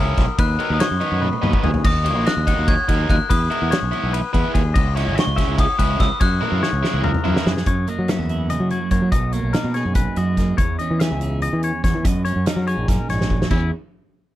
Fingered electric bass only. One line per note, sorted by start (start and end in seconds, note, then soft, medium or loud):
0.00 0.14 C#2 loud
0.18 0.26 B1 loud
0.39 0.56 D#2 medium
0.70 0.79 D#2 loud
0.91 1.00 F#2 medium
1.12 1.29 F#2 medium
1.43 1.51 D#2 medium
1.65 1.82 D#2 medium
1.85 2.16 D#2 loud
2.16 2.24 A#1 medium
2.37 2.54 D#2 medium
2.58 2.75 D#2 medium
2.89 3.06 D#2 medium
3.10 3.18 D#2 loud
3.30 3.48 E2 loud
3.62 3.70 E2 loud
3.83 3.91 B1 loud
4.03 4.21 B1 medium
4.35 4.43 E2 loud
4.55 4.72 D#2 medium
4.76 5.08 C#2 loud
5.06 5.15 G#1 loud
5.27 5.45 C#2 loud
5.48 5.66 C#2 medium
5.79 5.97 C#2 loud
6.00 6.09 C#2 loud
6.21 6.39 F#2 loud
6.52 6.61 F#2 medium
6.73 6.82 C#2 loud
6.94 7.11 C#2 medium
7.25 7.34 F#2 medium
7.46 7.64 F#2 loud
7.67 7.84 F#2 medium
7.99 8.16 F#3 medium
8.19 8.54 E2 medium
8.60 8.78 F#3 medium
8.91 9.00 F#2 medium
9.02 9.11 F#3 medium
9.12 9.39 B1 loud
9.43 9.53 B1 medium
9.64 9.82 B2 medium
9.85 9.94 F#2 medium
9.96 10.05 B1 medium
10.17 10.53 F#2 medium
10.59 10.76 E2 loud
10.91 11.08 E3 medium
11.11 11.47 C#2 medium
11.53 11.71 E3 medium
11.84 11.93 E2 medium
11.95 12.03 E3 loud
12.05 12.31 F#2 loud
12.36 12.45 F#2 medium
12.56 12.74 F#3 medium
12.77 12.86 A#1 loud
12.88 12.97 F#2 loud
13.09 13.44 A#1 medium
13.51 13.70 E2 loud